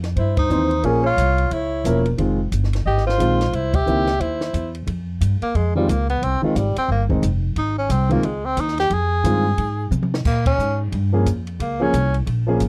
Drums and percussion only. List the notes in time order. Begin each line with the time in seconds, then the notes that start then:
0.03 snare, ride
0.16 kick, ride
0.37 kick, ride
0.50 hi-hat pedal
0.71 ride
0.83 kick, ride
1.17 kick, hi-hat pedal, ride
1.38 ride
1.51 kick, ride
1.85 kick, hi-hat pedal, ride
2.06 ride
2.18 kick, ride
2.52 kick, hi-hat pedal, ride
2.64 snare
2.73 snare, ride
2.86 kick
2.98 snare
3.09 snare
3.19 kick, hi-hat pedal, ride
3.41 snare, ride
3.53 kick, ride
3.74 kick, ride
3.87 hi-hat pedal
4.07 snare, ride
4.20 kick, ride
4.41 snare
4.54 kick, hi-hat pedal, ride
4.75 ride
4.87 kick, ride
5.21 kick, hi-hat pedal, ride
5.42 ride
5.55 kick, ride
5.89 kick, hi-hat pedal, ride
6.09 ride
6.22 kick, ride
6.56 kick, hi-hat pedal, ride
6.76 ride
6.89 kick
7.10 kick
7.23 kick, hi-hat pedal, ride
7.56 kick, ride
7.90 kick, hi-hat pedal, ride
8.10 ride
8.23 kick, ride
8.57 kick, hi-hat pedal, ride
8.68 snare
8.78 snare, ride
8.90 kick, ride
9.24 kick, hi-hat pedal, ride
9.58 kick, ride
9.91 hi-hat pedal, mid tom
10.03 mid tom
10.14 snare
10.25 kick, crash
10.46 kick, ride
10.59 hi-hat pedal
10.92 kick, ride
11.26 kick, hi-hat pedal, ride
11.47 ride
11.60 kick, ride
11.93 kick, hi-hat pedal, ride
12.14 ride
12.27 kick, ride
12.60 kick, hi-hat pedal, ride